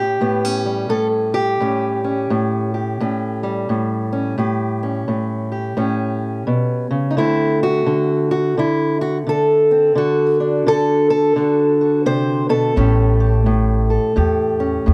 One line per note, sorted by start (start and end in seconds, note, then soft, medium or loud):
0.00 0.20 A2 medium
0.00 0.21 C#4 soft
0.00 0.89 G4 loud
0.21 0.89 A2 medium
0.21 0.45 B3 soft
0.45 1.61 C#4 soft
0.66 3.42 G3 soft
0.89 1.60 A2 medium
0.89 1.06 A4 medium
1.34 2.72 G4 medium
1.60 2.30 A2 medium
1.60 2.04 C#4 soft
2.04 3.01 C#4 soft
2.30 3.00 A2 medium
2.74 4.35 G4 soft
3.00 3.68 A2 medium
3.00 4.11 C#4 soft
3.43 7.17 G3 soft
3.69 4.36 A2 medium
4.12 4.35 C#4 medium
4.38 5.07 A2 medium
4.38 5.50 G4 soft
4.83 5.76 C#4 soft
5.08 5.76 A2 medium
5.52 7.14 G4 soft
5.77 6.46 A2 medium
5.77 7.10 C#4 medium
6.47 6.90 B2 medium
6.91 7.17 C#3 medium
7.11 7.16 D#4 soft
7.17 7.86 D3 medium
7.17 10.40 A3 soft
7.17 9.70 C4 soft
7.17 7.61 E4 medium
7.63 8.30 F#4 medium
7.86 8.57 D3 medium
8.31 8.57 F#4 medium
8.58 9.25 D3 medium
8.58 9.01 E4 medium
9.01 9.17 F#4 medium
9.27 9.94 D3 medium
9.27 10.67 A4 medium
9.71 9.94 C4 soft
9.95 10.65 D3 medium
9.95 11.36 F#4 medium
10.40 12.74 D4 soft
10.67 11.35 D3 medium
10.67 11.09 A4 loud
11.10 12.06 A4 loud
11.36 12.76 D3 medium
11.36 11.80 F#4 soft
11.81 12.74 F#4 soft
12.06 12.49 C3 medium
12.06 12.49 C5 loud
12.49 12.76 B2 medium
12.49 13.89 A4 loud
12.76 13.97 A1 loud
12.76 13.46 A2 medium
12.76 14.94 A3 soft
12.76 14.59 C#4 medium
12.76 13.20 G4 medium
13.20 14.16 G4 soft
13.46 14.15 A2 medium
13.90 14.94 A4 soft
14.16 14.77 E2 medium
14.16 14.85 A2 medium
14.16 14.94 G4 soft
14.60 14.94 C#4 soft
14.86 14.94 E2 medium
14.86 14.94 A2 medium